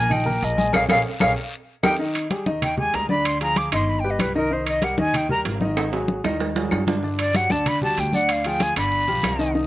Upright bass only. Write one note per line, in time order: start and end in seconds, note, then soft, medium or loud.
0.00 0.39 A#1 loud
0.42 0.72 A#1 loud
0.74 0.86 A#1 loud
0.90 1.01 A#1 loud
1.21 1.33 A#1 loud
1.84 1.95 D#2 loud
2.46 2.91 D#2 loud
2.94 3.67 D2 loud
3.72 4.17 G1 loud
4.19 4.93 C2 loud
4.98 5.42 D#2 loud
5.45 6.19 G#1 loud
6.24 6.68 D#2 loud
6.72 7.45 G2 loud
7.50 7.94 D2 loud
7.98 8.71 D2 loud
8.76 9.06 G1 medium
9.07 9.22 B1 medium
9.23 9.67 C2 loud